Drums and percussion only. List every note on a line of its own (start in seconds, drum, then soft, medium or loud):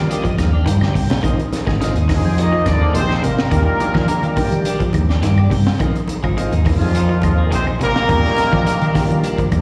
0.11 closed hi-hat medium
0.25 kick medium
0.25 closed hi-hat soft
0.38 kick medium
0.38 snare soft
0.38 closed hi-hat medium
0.38 high conga loud
0.38 claves medium
0.66 closed hi-hat medium
0.66 high conga loud
0.81 snare soft
0.81 low conga medium
0.81 claves medium
0.95 kick medium
0.95 open hi-hat medium
1.10 snare medium
1.10 low conga medium
1.24 kick medium
1.24 closed hi-hat medium
1.24 claves medium
1.39 closed hi-hat soft
1.53 snare soft
1.53 closed hi-hat medium
1.53 high conga medium
1.67 kick medium
1.67 snare soft
1.67 low conga medium
1.67 claves medium
1.81 snare soft
1.81 closed hi-hat medium
1.96 closed hi-hat soft
2.09 kick medium
2.09 snare soft
2.09 open hi-hat medium
2.09 low conga medium
2.09 claves medium
2.24 high conga medium
2.38 closed hi-hat medium
2.66 kick medium
2.66 snare soft
2.66 closed hi-hat medium
2.66 high conga loud
2.66 claves medium
2.95 closed hi-hat medium
2.95 high conga medium
3.09 snare soft
3.09 high conga medium
3.09 claves medium
3.23 closed hi-hat medium
3.23 low conga medium
3.39 snare medium
3.51 kick loud
3.51 closed hi-hat medium
3.51 claves medium
3.80 closed hi-hat medium
3.80 high conga loud
3.94 kick medium
3.94 snare soft
3.94 low conga medium
3.94 claves medium
4.08 closed hi-hat medium
4.08 high conga medium
4.23 closed hi-hat soft
4.23 high conga medium
4.36 kick medium
4.36 open hi-hat medium
4.36 low conga medium
4.36 claves medium
4.51 closed hi-hat soft
4.51 high conga medium
4.65 closed hi-hat medium
4.80 kick medium
4.80 closed hi-hat soft
4.93 kick medium
4.93 closed hi-hat medium
4.93 high conga loud
4.93 claves medium
5.10 snare soft
5.23 snare soft
5.23 closed hi-hat medium
5.36 high conga medium
5.36 claves medium
5.50 kick medium
5.50 open hi-hat medium
5.50 low conga medium
5.67 snare medium
5.80 kick medium
5.80 closed hi-hat medium
5.80 claves medium
5.96 closed hi-hat soft
6.08 closed hi-hat medium
6.08 high conga loud
6.23 kick medium
6.23 low conga medium
6.23 claves medium
6.38 closed hi-hat medium
6.51 closed hi-hat soft
6.51 high conga medium
6.64 kick medium
6.64 open hi-hat medium
6.64 low conga medium
6.64 claves medium
6.80 high conga medium
6.95 closed hi-hat medium
7.22 kick medium
7.22 closed hi-hat medium
7.22 high conga loud
7.22 claves medium
7.51 closed hi-hat medium
7.51 high conga medium
7.66 high conga medium
7.66 claves medium
7.79 closed hi-hat medium
7.79 low conga medium
7.96 snare medium
8.09 kick loud
8.09 closed hi-hat medium
8.09 claves medium
8.25 snare soft
8.37 snare soft
8.37 closed hi-hat medium
8.37 high conga medium
8.52 kick medium
8.52 claves medium
8.66 closed hi-hat medium
8.66 high conga medium
8.81 closed hi-hat soft
8.81 high conga medium
8.94 kick medium
8.94 snare soft
8.94 open hi-hat medium
8.94 low conga medium
8.94 claves medium
9.10 closed hi-hat soft
9.10 high conga medium
9.24 closed hi-hat medium
9.38 kick medium
9.38 closed hi-hat soft
9.52 kick medium
9.52 closed hi-hat soft
9.52 high conga loud
9.52 claves medium